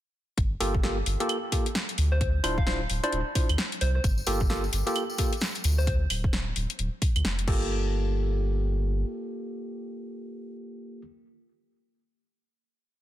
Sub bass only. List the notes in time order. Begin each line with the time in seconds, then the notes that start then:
0.38 G1
0.61 G1
1.06 G1
1.98 D2
2.44 D1
2.90 D1
3.12 D1
3.49 D2
3.81 C2
4.04 G1
4.27 G1
4.73 G1
5.64 D2
6.10 D1
6.56 D1
6.79 D1
7.16 D2
7.25 F1
7.48 G1